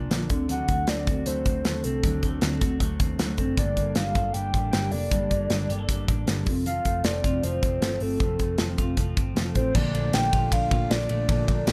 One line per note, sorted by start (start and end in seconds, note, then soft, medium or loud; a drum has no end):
0.00 0.34 A#2 medium
0.00 0.29 F3 medium
0.00 0.10 A#3 medium
0.00 0.11 D4 medium
0.00 0.87 D4 medium
0.00 0.34 F4 medium
0.00 0.11 A#4 medium
0.10 0.26 A#1 medium
0.10 0.30 A#2 medium
0.10 0.30 D3 medium
0.10 0.30 F3 medium
0.10 0.34 A#3 medium
0.10 0.30 A#3 medium
0.10 0.30 D4 medium
0.10 0.29 A#4 medium
0.10 snare medium
0.10 closed hi-hat medium
0.29 0.62 D2 medium
0.29 0.49 D3 medium
0.29 0.48 C4 soft
0.29 0.49 D4 medium
0.29 0.49 A4 soft
0.29 kick medium
0.29 closed hi-hat medium
0.48 0.87 D3 medium
0.48 2.03 D3 medium
0.48 0.87 F#3 medium
0.48 0.87 C4 medium
0.48 0.89 D4 medium
0.48 0.89 A4 medium
0.48 0.90 F#5 loud
0.48 closed hi-hat medium
0.68 0.84 D2 medium
0.68 1.26 A3 soft
0.68 kick medium
0.68 closed hi-hat medium
0.87 1.04 D2 medium
0.87 1.07 D3 medium
0.87 1.07 F#3 medium
0.87 1.45 C4 soft
0.87 1.07 C4 medium
0.87 1.07 D4 medium
0.87 1.05 A4 medium
0.87 1.28 D5 medium
0.87 snare loud
0.87 closed hi-hat medium
1.06 1.23 D2 medium
1.06 1.25 C4 soft
1.06 1.26 D4 soft
1.06 2.60 F#4 medium
1.06 1.26 A4 soft
1.06 kick medium
1.06 closed hi-hat medium
1.25 1.42 D2 medium
1.25 1.64 F#3 medium
1.25 1.65 A3 medium
1.25 1.64 C4 medium
1.25 1.66 D4 medium
1.25 1.66 A4 medium
1.25 1.86 C5 medium
1.25 closed hi-hat medium
1.45 1.61 D2 medium
1.45 1.83 C4 soft
1.45 kick medium
1.45 closed hi-hat medium
1.64 1.81 D#2 medium
1.64 1.84 D3 medium
1.64 1.84 F#3 medium
1.64 2.23 A3 medium
1.64 1.84 C4 medium
1.64 1.84 D4 medium
1.64 1.82 A4 medium
1.64 snare medium
1.64 closed hi-hat medium
1.83 2.00 C2 medium
1.83 2.42 C4 medium
1.83 2.03 C4 soft
1.83 2.03 D4 soft
1.83 2.03 A4 soft
1.83 2.42 A4 medium
1.83 closed hi-hat medium
2.03 2.19 D2 medium
2.03 2.41 D3 medium
2.03 5.54 D3 medium
2.03 2.41 F#3 medium
2.03 2.41 C4 medium
2.03 2.42 D4 medium
2.03 2.43 A4 medium
2.03 kick loud
2.03 closed hi-hat medium
2.23 2.39 D2 medium
2.23 2.80 A3 medium
2.23 kick medium
2.23 closed hi-hat medium
2.41 2.58 D2 loud
2.41 2.61 D3 medium
2.41 2.61 F#3 medium
2.41 2.52 A#3 soft
2.41 2.62 C4 medium
2.41 2.61 D4 loud
2.41 2.59 A4 loud
2.41 snare loud
2.41 closed hi-hat medium
2.52 2.98 C4 soft
2.60 2.77 D2 medium
2.60 2.79 C4 soft
2.60 2.80 D4 soft
2.60 3.61 F#4 medium
2.60 2.80 A4 medium
2.60 kick medium
2.60 closed hi-hat medium
2.79 2.96 D2 medium
2.79 3.17 F#3 medium
2.79 3.19 A3 medium
2.79 3.18 C4 medium
2.79 3.19 D4 medium
2.79 3.20 A4 medium
2.79 kick medium
2.79 closed hi-hat medium
3.00 3.16 D#2 medium
3.00 3.37 C4 medium
3.00 kick loud
3.00 closed hi-hat medium
3.18 3.35 D2 medium
3.18 3.38 D3 medium
3.18 3.38 F#3 medium
3.18 3.80 A3 medium
3.18 3.38 C4 medium
3.18 3.38 D4 medium
3.18 3.36 A4 medium
3.18 snare loud
3.18 closed hi-hat medium
3.37 3.54 F#1 medium
3.37 3.61 C4 medium
3.37 3.58 C4 soft
3.37 3.57 D4 soft
3.37 3.57 A4 medium
3.37 kick medium
3.37 closed hi-hat medium
3.57 3.73 G1 medium
3.57 3.94 G2 medium
3.57 5.10 G2 medium
3.57 3.95 D3 medium
3.57 3.95 G3 medium
3.57 3.96 A#3 medium
3.57 3.96 D4 medium
3.57 3.98 A4 medium
3.57 3.97 D5 medium
3.57 kick loud
3.57 closed hi-hat medium
3.77 3.93 G1 medium
3.77 4.72 A#3 medium
3.77 kick medium
3.77 closed hi-hat medium
3.95 4.12 G1 medium
3.95 4.15 G2 medium
3.95 4.15 D3 medium
3.95 4.16 G3 medium
3.95 4.16 A#3 medium
3.95 4.53 D4 medium
3.95 4.15 D4 medium
3.95 4.14 A4 medium
3.95 4.35 F5 medium
3.95 snare medium
3.95 closed hi-hat medium
4.15 4.31 G1 medium
4.15 4.33 G3 soft
4.15 4.34 A#3 soft
4.15 4.35 D4 soft
4.15 4.34 A4 soft
4.15 5.69 A4 soft
4.15 kick medium
4.15 closed hi-hat medium
4.33 4.50 G1 loud
4.33 4.72 G3 medium
4.33 5.87 G3 medium
4.33 4.73 A#3 soft
4.33 4.73 D4 medium
4.33 4.71 G5 loud
4.33 closed hi-hat medium
4.37 4.74 A4 medium
4.54 4.70 A1 medium
4.54 4.91 D4 medium
4.54 kick medium
4.54 closed hi-hat medium
4.71 4.89 G1 medium
4.71 4.92 G2 medium
4.71 4.92 D3 medium
4.71 4.93 G3 medium
4.71 5.29 A#3 medium
4.71 4.93 A#3 medium
4.71 4.92 D4 medium
4.71 4.91 A4 medium
4.71 4.93 G5 medium
4.71 snare loud
4.71 closed hi-hat medium
4.91 5.08 F1 medium
4.91 5.11 G3 soft
4.91 5.11 A#3 soft
4.91 5.49 D4 medium
4.91 5.11 D4 soft
4.91 5.12 A4 soft
4.91 6.08 D5 medium
4.91 open hi-hat medium
5.11 5.27 G1 loud
5.11 5.49 G2 medium
5.11 6.46 G2 medium
5.11 5.49 D3 medium
5.11 5.50 G3 medium
5.11 5.50 A#3 medium
5.11 5.51 D4 medium
5.11 5.52 A4 medium
5.11 kick loud
5.11 closed hi-hat medium
5.30 5.47 G1 medium
5.30 6.26 A#3 medium
5.30 kick medium
5.30 closed hi-hat medium
5.50 5.66 G1 medium
5.50 5.69 G2 medium
5.50 5.70 D3 medium
5.50 5.70 G3 medium
5.50 5.70 A#3 medium
5.50 6.07 D4 medium
5.50 5.69 D4 medium
5.50 5.68 A4 medium
5.50 snare medium
5.50 closed hi-hat medium
5.69 5.85 G1 medium
5.69 5.87 G3 soft
5.69 5.88 A#3 soft
5.69 5.89 D4 soft
5.69 5.79 G4 medium
5.69 5.89 A4 soft
5.69 closed hi-hat medium
5.79 6.50 A4 medium
5.88 6.05 G1 medium
5.88 6.27 G3 medium
5.88 6.50 G3 medium
5.88 6.27 A#3 medium
5.88 6.28 D4 medium
5.88 6.29 A4 medium
5.88 kick medium
5.88 closed hi-hat loud
6.08 6.24 A1 medium
6.08 6.51 D4 medium
6.08 kick loud
6.08 closed hi-hat medium
6.27 6.43 G1 medium
6.27 6.46 G2 medium
6.27 6.47 D3 medium
6.27 6.47 G3 medium
6.27 6.51 A#3 medium
6.27 6.47 A#3 medium
6.27 6.47 D4 medium
6.27 6.45 A4 medium
6.27 snare loud
6.27 closed hi-hat medium
6.46 6.78 F1 medium
6.46 6.65 F2 medium
6.46 6.66 C4 medium
6.46 6.66 F4 medium
6.46 6.66 A4 medium
6.46 kick loud
6.46 open hi-hat medium
6.66 8.19 F2 medium
6.66 7.04 F3 medium
6.66 7.04 C4 medium
6.66 7.05 F4 medium
6.66 7.06 A4 medium
6.66 7.06 F5 loud
6.66 closed hi-hat medium
6.85 7.01 F1 medium
6.85 7.81 A3 medium
6.85 kick medium
6.85 closed hi-hat medium
7.04 7.20 F1 medium
7.04 7.24 F3 medium
7.04 7.61 C4 medium
7.04 7.24 C4 medium
7.04 7.23 F4 medium
7.04 7.22 A4 medium
7.04 7.45 D5 medium
7.04 snare loud
7.04 closed hi-hat medium
7.23 7.40 F1 medium
7.23 7.43 C4 soft
7.23 8.78 F4 medium
7.23 7.44 F4 soft
7.23 7.43 A4 soft
7.23 kick medium
7.23 closed hi-hat medium
7.42 7.59 F1 loud
7.42 7.81 F3 medium
7.42 8.97 F3 medium
7.42 7.81 C4 medium
7.42 7.82 F4 medium
7.42 7.83 A4 medium
7.42 8.04 C5 medium
7.42 closed hi-hat loud
7.63 7.78 F1 medium
7.63 8.00 C4 medium
7.63 kick medium
7.63 closed hi-hat medium
7.81 7.98 G1 medium
7.81 8.01 F3 medium
7.81 8.39 A3 medium
7.81 8.01 C4 medium
7.81 8.01 F4 medium
7.81 7.99 A4 medium
7.81 snare medium
7.81 closed hi-hat medium
8.00 8.17 G1 medium
8.00 8.58 C4 soft
8.00 8.20 C4 soft
8.00 8.21 F4 soft
8.00 8.20 A4 soft
8.00 8.60 A4 medium
8.00 open hi-hat medium
8.20 8.36 F1 medium
8.20 9.75 F2 medium
8.20 8.58 F3 medium
8.20 8.58 C4 medium
8.20 8.60 F4 medium
8.20 8.60 A4 medium
8.20 kick loud
8.20 closed hi-hat medium
8.39 8.56 F1 medium
8.39 9.36 A3 soft
8.39 kick medium
8.39 closed hi-hat medium
8.58 8.75 F1 loud
8.58 8.78 F3 medium
8.58 9.15 C4 soft
8.58 8.79 C4 medium
8.58 8.78 F4 medium
8.58 8.76 A4 medium
8.58 snare loud
8.58 closed hi-hat medium
8.77 8.94 F1 medium
8.77 8.96 C4 soft
8.77 10.32 F4 soft
8.77 8.98 F4 soft
8.77 8.97 A4 medium
8.77 kick medium
8.77 closed hi-hat medium
8.97 9.13 F1 medium
8.97 9.35 F3 medium
8.97 11.72 F3 medium
8.97 9.35 C4 medium
8.97 9.36 F4 medium
8.97 9.37 A4 medium
8.97 kick medium
8.97 closed hi-hat medium
9.17 9.33 G1 medium
9.17 9.54 C4 soft
9.17 kick loud
9.17 closed hi-hat medium
9.35 9.52 F1 medium
9.35 9.55 F3 medium
9.35 9.94 A3 medium
9.35 9.55 C4 medium
9.35 9.55 F4 medium
9.35 9.53 A4 medium
9.35 snare loud
9.35 closed hi-hat medium
9.54 9.71 A1 medium
9.54 9.79 C4 medium
9.54 9.75 C4 soft
9.54 9.75 F4 soft
9.54 9.74 A4 medium
9.54 9.76 C5 medium
9.54 kick medium
9.54 closed hi-hat medium
9.74 9.91 A#1 loud
9.74 10.13 A#2 medium
9.74 11.27 A#2 medium
9.74 11.28 D3 medium
9.74 10.11 F3 medium
9.74 10.13 A#3 medium
9.74 10.14 D4 medium
9.74 10.14 A4 medium
9.74 10.15 D5 loud
9.74 kick loud
9.74 crash loud
9.94 10.10 A#1 medium
9.94 11.08 A3 medium
9.94 ride medium
10.12 10.29 A#1 loud
10.12 10.70 F3 medium
10.12 10.72 A#3 medium
10.12 10.51 D4 medium
10.12 10.71 D4 medium
10.12 10.69 A4 medium
10.12 10.54 G5 loud
10.12 snare loud
10.12 ride medium
10.32 10.49 A#1 medium
10.32 10.70 F4 medium
10.32 kick loud
10.32 ride medium
10.51 10.68 A#1 loud
10.51 10.90 D4 medium
10.51 10.92 F5 medium
10.51 kick loud
10.51 ride medium
10.70 10.87 A#1 medium
10.70 10.88 F3 soft
10.70 10.89 A#3 soft
10.70 10.91 D4 soft
10.70 11.72 F4 medium
10.70 10.90 A4 medium
10.70 kick loud
10.70 ride medium
10.89 11.06 A#1 medium
10.89 11.09 F3 medium
10.89 11.10 A#3 medium
10.89 11.66 D4 medium
10.89 11.09 D4 medium
10.89 11.07 A4 medium
10.89 11.10 D5 loud
10.89 snare loud
10.89 ride medium
11.08 11.25 A#1 medium
11.08 11.28 F3 soft
11.08 11.47 A3 medium
11.08 11.29 A#3 soft
11.08 11.29 D4 medium
11.08 11.28 A4 soft
11.08 11.72 D5 medium
11.08 ride medium
11.28 11.45 A#1 loud
11.28 11.67 A#2 medium
11.28 11.72 A#2 medium
11.28 11.72 D3 medium
11.28 11.65 F3 medium
11.28 11.67 A#3 medium
11.28 11.68 D4 medium
11.28 11.68 A4 loud
11.28 kick loud
11.28 ride medium
11.48 11.64 A#1 medium
11.48 11.72 A3 medium
11.48 kick medium
11.48 ride soft
11.66 11.72 A#1 loud
11.66 11.72 F3 medium
11.66 11.72 A#3 medium
11.66 11.72 D4 medium
11.66 snare loud
11.66 ride medium